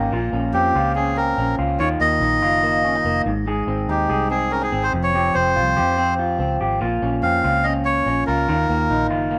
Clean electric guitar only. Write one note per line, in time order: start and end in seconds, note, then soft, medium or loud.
0.00 0.12 D#3 medium
0.00 0.33 A#3 medium
0.00 0.17 C#4 medium
0.00 0.13 G4 medium
0.12 1.79 A#2 medium
0.12 0.75 F4 medium
0.33 0.95 C#4 soft
0.55 1.16 C4 medium
0.76 1.57 F4 medium
0.97 1.37 C#4 medium
1.17 1.84 C4 soft
1.38 1.84 C#4 medium
1.59 1.79 F4 medium
1.80 3.30 D#3 medium
1.80 2.41 F4 medium
2.01 2.62 A#3 medium
2.21 2.84 D#4 medium
2.42 3.30 F4 medium
2.63 3.04 A#3 medium
2.85 2.95 C#4 medium
2.95 3.30 D#4 soft
3.06 3.30 A#3 medium
3.26 3.46 G#2 medium
3.47 4.93 G#2 medium
3.47 4.09 G#4 medium
3.68 4.30 C4 soft
3.89 4.51 D#4 medium
4.10 4.97 G#4 medium
4.31 4.72 C4 medium
4.51 4.62 C#4 medium
4.62 4.97 D#4 soft
4.72 5.34 C4 medium
4.93 5.13 F2 medium
5.14 6.81 F2 medium
5.14 5.75 G4 medium
5.35 5.97 C4 soft
5.56 6.18 F4 medium
5.77 6.59 G4 medium
5.98 6.39 C4 medium
6.19 6.82 F4 medium
6.40 6.85 C4 medium
6.61 6.81 G4 medium
6.81 8.48 A#2 medium
6.81 7.44 F4 medium
7.02 7.64 C#4 medium
7.23 7.86 C4 medium
7.44 8.27 F4 medium
7.66 8.06 C#4 medium
8.08 8.53 C#4 medium
8.28 8.48 F4 medium
8.49 9.39 D#3 medium
8.49 9.09 F4 medium
8.70 9.30 A#3 medium
8.90 9.39 D#4 medium
9.11 9.39 F4 medium
9.31 9.39 A#3 medium